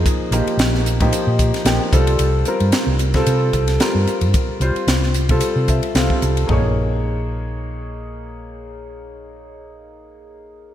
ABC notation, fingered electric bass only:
X:1
M:4/4
L:1/16
Q:"Swing 16ths" 1/4=112
K:Bbdor
V:1 name="Fingered electric bass" clef=bass
z2 B,,, z B,,,3 B,, z B,,2 z B,,, z C,,2 | C,,2 z G,, z C,,3 C,2 C,,2 z G,, z G,, | z2 C,, z C,,3 C, z C,2 z C,, z C,,2 | B,,,16- |
B,,,16 |]